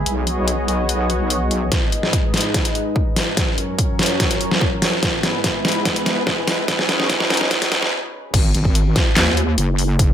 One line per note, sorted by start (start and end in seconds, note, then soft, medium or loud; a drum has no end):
0.00 1.68 G#4 medium
0.06 1.70 B1 medium
0.06 1.70 B3 medium
0.06 1.70 F#4 medium
0.06 1.70 C#5 medium
0.06 1.70 D#5 medium
0.06 closed hi-hat medium
0.27 closed hi-hat soft
0.48 closed hi-hat medium
0.68 closed hi-hat medium
0.89 closed hi-hat medium
1.10 closed hi-hat soft
1.30 closed hi-hat medium
1.51 closed hi-hat soft
1.72 3.36 G#2 medium
1.72 3.36 G#3 medium
1.72 3.36 D#4 medium
1.72 3.36 B4 medium
1.72 3.36 D#5 medium
1.72 kick medium
1.72 snare soft
1.72 closed hi-hat medium
1.92 closed hi-hat medium
2.03 snare soft
2.13 kick medium
2.13 closed hi-hat medium
2.34 snare medium
2.34 closed hi-hat soft
2.37 closed hi-hat medium
2.41 closed hi-hat medium
2.54 kick loud
2.54 snare soft
2.54 closed hi-hat medium
2.65 closed hi-hat medium
2.75 closed hi-hat medium
2.96 kick medium
3.16 snare medium
3.16 open hi-hat medium
3.37 5.01 F#2 medium
3.37 5.01 F#3 medium
3.37 5.01 C#4 medium
3.37 5.01 A#4 medium
3.37 5.01 C#5 loud
3.37 kick medium
3.37 snare medium
3.37 closed hi-hat medium
3.58 closed hi-hat medium
3.79 kick medium
3.79 closed hi-hat medium
3.99 snare medium
3.99 closed hi-hat soft
4.03 closed hi-hat medium
4.06 closed hi-hat medium
4.20 kick loud
4.20 snare medium
4.20 closed hi-hat medium
4.31 closed hi-hat medium
4.41 closed hi-hat medium
4.51 snare medium
4.61 kick loud
4.82 snare medium
4.82 open hi-hat medium
5.03 6.67 G#2 medium
5.03 8.30 G#3 medium
5.03 6.67 B3 medium
5.03 6.67 E4 medium
5.03 8.30 B4 medium
5.03 kick loud
5.03 snare medium
5.03 closed hi-hat medium
5.23 snare medium
5.23 closed hi-hat medium
5.44 kick medium
5.44 snare medium
5.44 closed hi-hat medium
5.65 snare medium
5.65 closed hi-hat soft
5.68 closed hi-hat medium
5.72 closed hi-hat medium
5.85 kick medium
5.85 snare medium
5.85 closed hi-hat medium
5.96 closed hi-hat medium
6.06 snare medium
6.06 closed hi-hat medium
6.27 kick loud
6.27 snare medium
6.48 snare medium
6.48 open hi-hat medium
6.68 8.32 B2 medium
6.68 8.32 C#4 medium
6.68 8.32 D#4 medium
6.68 kick medium
6.68 snare medium
6.68 closed hi-hat medium
6.79 snare medium
6.89 snare loud
6.89 closed hi-hat medium
7.00 snare medium
7.10 kick medium
7.10 snare medium
7.10 closed hi-hat medium
7.20 snare medium
7.30 snare loud
7.30 closed hi-hat soft
7.34 closed hi-hat medium
7.37 snare medium
7.37 closed hi-hat medium
7.51 kick loud
7.51 snare loud
7.51 closed hi-hat medium
7.62 snare medium
7.62 closed hi-hat medium
7.72 snare loud
7.72 closed hi-hat medium
7.82 snare medium
8.34 8.53 G#1 loud
8.34 kick loud
8.34 closed hi-hat medium
8.34 crash loud
8.54 8.64 G#1 loud
8.54 closed hi-hat medium
8.65 8.94 G#1 loud
8.65 kick medium
8.75 closed hi-hat medium
8.96 kick loud
8.96 snare medium
8.96 closed hi-hat medium
9.16 9.56 D#2 medium
9.16 snare loud
9.16 clap medium
9.16 closed hi-hat medium
9.37 closed hi-hat medium
9.58 10.14 F#1 loud
9.58 closed hi-hat medium
9.79 open hi-hat medium
9.99 kick loud
9.99 closed hi-hat medium